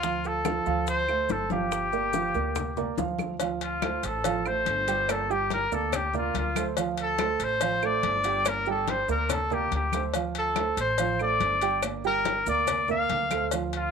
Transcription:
Already playing: D2 F4
0.03 F3 F4 F5, high bongo, maracas
0.24 A4, high bongo, high conga, maracas
0.45 F3 F4 F5, high bongo, high conga, claves, maracas
0.66 D2 F3 F4 F5, high bongo, high conga, maracas
0.87 C5, high bongo, high conga, maracas
1.07 A3 A4 C5, high conga, claves, maracas
1.29 G1 A4, high bongo, low bongo, high conga, maracas
1.50 F3 F4 G4 F5, high bongo, high conga, maracas
1.72 high bongo, claves, maracas
1.92 A#3 A#4 D5, high bongo, high conga, maracas
2.13 F3 F4 F5, high bongo, high conga, maracas
2.34 D2 A#3 A#4 D5, high bongo, high conga, maracas
2.55 high bongo, high conga, low conga, claves, maracas
2.77 A#3 A#4 D5, high conga, low conga, maracas
2.97 D2 F3 F4 F5, high bongo, low bongo, high conga, maracas
3.19 high bongo, high conga, claves, maracas
3.40 F3 F4 F5, cowbell, high conga, maracas
3.61 F4, cowbell, high conga, maracas
3.82 A3 A4 C5, cowbell, high conga, claves, maracas
4.03 A1 A4, cowbell, high conga, maracas
4.24 F3 F4 F5, cowbell, high conga, maracas
4.45 A3 A4 C5, high conga, claves, maracas
4.66 G1, cowbell, high conga, maracas
4.88 G3 G4 G5, cowbell, high conga, maracas
5.09 A#3 A4 A#4 D5, cowbell, high conga, claves, maracas
5.29 G3 G4 G5, high conga, maracas
5.50 A#4, cowbell, high conga, maracas
5.72 D2 A#3 A4 A#4 D5, high conga, maracas
5.92 G4, cowbell, high conga, low conga, claves, maracas
6.13 A#3 F4 A#4 D5, high conga, low conga, maracas
6.34 D2 F4, cowbell, high conga, maracas
6.56 A3 A4 C5, cowbell, high conga, claves, maracas
6.77 F3 F4 F5, cowbell, high conga, maracas
6.97 cowbell, high conga, maracas
7.02 A4
7.18 A3 A4 C5, cowbell, high conga, claves, maracas
7.40 A1 C5, cowbell, high conga, maracas
7.61 F3 F4 F5, cowbell, high conga, maracas
7.82 A3 A4 C5 D5, high conga, claves, maracas
8.03 G1, cowbell, high conga, maracas
8.24 G3 G4 G5, cowbell, maracas
8.45 A#3 A#4 D5, cowbell, high conga, claves, maracas
8.66 G3 G4 G5, high conga, maracas
8.70 A4
8.87 C5, cowbell, high conga, maracas
9.08 D2 A#3 A#4 D5, high conga, maracas
9.29 A4, cowbell, high conga, low conga, claves, maracas
9.50 A#3 G4 A#4 D5, high conga, low conga, maracas
9.71 D2 G4, cowbell, high conga, maracas
9.92 A3 A4 C5, cowbell, high conga, claves, maracas
10.14 F3 F4 F5, cowbell, high conga, maracas
10.35 A4, cowbell, high conga, maracas
10.56 A3 A4 C5, cowbell, high conga, claves, maracas
10.77 A1 C5, cowbell, high conga, maracas
10.98 F3 F4 F5, cowbell, high conga, maracas
11.19 A3 A4 C5 D5, high conga, claves, maracas
11.40 G1, cowbell, high conga, maracas
11.61 G3 G4 G5, cowbell, high conga, maracas
11.82 A#3 A#4 D5, cowbell, high conga, claves, maracas
12.04 G3 G4 A#4 G5, high conga, maracas
12.25 cowbell, high conga, maracas
12.46 D2 A#3 A#4 D5, high conga, maracas
12.67 cowbell, high conga, low conga, claves, maracas
12.88 A#3 A#4 D5 F5, high conga, low conga, maracas
13.09 D2, cowbell, high conga, maracas
13.31 A3 A4 C5, cowbell, high conga, claves, maracas
13.51 F3 F4 F5, cowbell, high conga, maracas
13.73 F4, cowbell, high conga, maracas

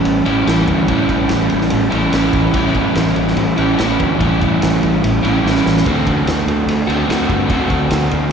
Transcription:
Already playing: A2 E3 G3 C#4 E4
0.05 A1, ride
0.25 A1 A2 E3 G3 C#4 E4, ride
0.46 A1 A2 E3 G3 C#4 E4, snare, ride
0.68 D2, kick, ride
0.87 A1 A2 E3 G3 C#4 E4, kick, ride
1.09 A1, kick, ride
1.29 A1, snare, ride
1.50 A1, ride
1.61 snare
1.70 A1, ride
1.90 A1 A2 E3 G3 C#4 E4, ride
2.12 A1 A2 E3 G3 C#4 E4, snare, ride
2.33 A1, kick, ride
2.53 A1 A2 E3 G3 C#4 E4, kick, ride
2.75 A1, kick, ride
2.95 A1, snare, ride
3.07 snare
3.16 A1, ride
3.27 snare
3.36 A1, ride
3.57 A1 A2 E3 G3 C#4 E4, ride
3.78 A1 A2 E3 G3 C#4 E4, snare, ride
4.00 D2, kick, ride
4.19 A1 A2 E3 G3 C#4 E4, kick, ride
4.42 A1, kick, ride
4.62 A1, snare, ride
4.73 snare
4.83 A1, ride
5.04 A1, ride
5.23 A1 A2 E3 G3 C#4 E4, ride
5.44 A1 A2 E3 G3 C#4 E4, snare
5.55 snare
5.66 A1, snare
5.77 snare
5.85 D2 D3 A3 C4 F#4, kick, ride
6.07 D2, kick, ride
6.26 D2, snare, ride
6.47 D2, ride
6.66 D2, ride
6.87 D2 D3 A3 C4 F#4, ride
7.08 D2 D3 A3 C4 F#4, snare, ride
7.29 G2, kick, ride
7.47 D2 D3 A3 C4 F#4, kick, ride
7.70 D2, kick, ride
7.91 D2, snare, ride
8.02 snare
8.11 D2, ride

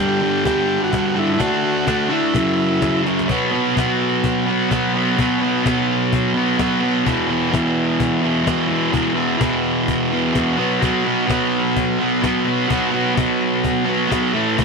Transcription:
Already playing: G2 G3 D4 G4
0.00 D3
0.22 G2 D3 G3, cajon slap
0.45 G2 D3 G3 G4, cajon bass, cajon slap
0.70 cajon slap
0.84 F#4
0.92 G2 D3 G3, cajon bass, cajon slap
1.15 G2 D3 G3 E4, cajon slap
1.33 E4
1.38 D3 A3 D4 F#4, cajon bass, cajon slap
1.64 cajon slap
1.87 D3 A3 D4, cajon bass, cajon slap
2.09 D3 A3 D4 E4, cajon slap
2.34 F#2 C#3 F#3, cajon bass, cajon slap
2.59 cajon slap
2.82 F#2 C#3 F#3, cajon bass, cajon slap
3.05 F#2 C#3 F#3, cajon slap
3.19 cajon slap
3.28 B2 F#3 B3, cajon bass
3.51 F#3 B3
3.55 cajon slap
3.75 B2 F#3 B3, cajon bass, cajon slap
4.01 cajon slap
4.24 cajon bass
4.46 B3, cajon slap
4.50 F#3
4.70 B2 F#3 B3, cajon bass, cajon slap
4.94 F#3 B3, cajon slap
5.17 B2 F#3 B3, cajon bass
5.41 F#3 B3, cajon slap
5.63 B2 F#3 B3, cajon bass, cajon slap
5.89 cajon slap
6.13 cajon bass
6.34 F#3 B3, cajon slap
6.58 B2 F#3 B3, cajon bass, cajon slap
6.81 F#3 B3, cajon slap
7.05 E2 B2 E3, cajon bass
7.28 B2 E3, cajon slap
7.51 E2 B2 E3, cajon bass, cajon slap
7.76 cajon slap
8.00 cajon bass
8.22 B2 E3, cajon slap
8.45 E2 B2 E3, cajon bass, cajon slap
8.68 B2 E3, cajon slap
8.91 E2 B2 E3, cajon bass
9.14 B2 E3, cajon slap
9.38 E2 B2 E3, cajon bass, cajon slap
9.65 cajon slap
9.88 cajon bass
10.11 B2 E3, cajon slap
10.33 E2 B2 E3, cajon bass, cajon slap
10.56 B2 F#3 B3, cajon slap
10.80 B2 F#3 B3, cajon bass
11.04 F#3 B3, cajon slap
11.27 B2 F#3 B3, cajon bass, cajon slap
11.53 cajon slap
11.77 cajon bass
11.99 F#3 B3, cajon slap
12.22 B2 F#3 B3, cajon bass, cajon slap
12.45 F#3 B3, cajon slap
12.68 B2 F#3 B3, cajon bass
12.91 F#3 B3, cajon slap
13.16 B2 F#3 B3, cajon bass, cajon slap
13.41 cajon slap
13.64 cajon bass
13.85 F#3 B3, cajon slap
14.09 B2 F#3 B3, cajon bass, cajon slap
14.34 A2 E3 A3, cajon slap
14.58 A2 E3 A3, cajon bass

